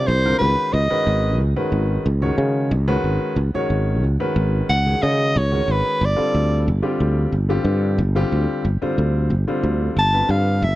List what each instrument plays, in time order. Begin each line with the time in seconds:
0.07 fretless electric bass C2, soprano saxophone C5
0.25 grand piano D3 G3 C4 F4 A#4
0.38 fretless electric bass C#2, grand piano D#3 G#3 C#4 F#4 B4, soprano saxophone B4
0.73 fretless electric bass C#2, soprano saxophone D#5
0.90 grand piano D#3 G#3 C#4 F#4 B4, muted fretless electric bass stroke
1.07 fretless electric bass G#1
1.40 fretless electric bass C#2
1.56 grand piano D#3 G#3 C#4 F#4 B4
1.72 fretless electric bass G#1
2.06 fretless electric bass C#2
2.22 grand piano D#3 G#3 C#4 F#4 C#5
2.38 fretless electric bass C#3
2.71 fretless electric bass C#2
2.88 grand piano D#3 G#3 C#4 F#4 B4
3.04 fretless electric bass G#1
3.36 fretless electric bass C#2
3.54 grand piano D#3 G#3 C#4 F#4 C#5, muted fretless electric bass stroke
3.70 fretless electric bass G#1
4.03 fretless electric bass C#2
4.20 grand piano D#3 G#3 C#4 F#4 B4
4.36 fretless electric bass G#1
4.69 fretless electric bass C#2, soprano saxophone F#5
4.85 grand piano D#3 G#3 C#4 F#4 G#4
5.02 fretless electric bass C#3, soprano saxophone D#5
5.36 fretless electric bass C#2, soprano saxophone C#5
5.52 grand piano D#3 G#3 C#4 F#4 C#5
5.68 fretless electric bass G#1, soprano saxophone B4
6.01 fretless electric bass G1, soprano saxophone D5
6.16 grand piano D3 G3 C4 F4 A4
6.34 fretless electric bass D2
6.68 fretless electric bass G1
6.82 grand piano D3 G3 C4 F4 G4
7.00 fretless electric bass D2
7.32 fretless electric bass G1
7.49 grand piano D3 G3 C4 F4 G4
7.64 fretless electric bass G2
7.98 fretless electric bass G1
8.15 grand piano D3 G3 C4 F4 G4
8.32 fretless electric bass D2
8.65 fretless electric bass G1
8.82 grand piano D3 G3 C4 F4 C5, muted fretless electric bass stroke
8.98 fretless electric bass D2
9.30 fretless electric bass G1
9.48 grand piano D3 G3 C4 F4 C5
9.63 fretless electric bass D2
9.97 fretless electric bass G1, soprano saxophone A5
10.13 grand piano D3 G3 C4 F4 B4
10.29 fretless electric bass G2, soprano saxophone F5
10.62 fretless electric bass G1, soprano saxophone E5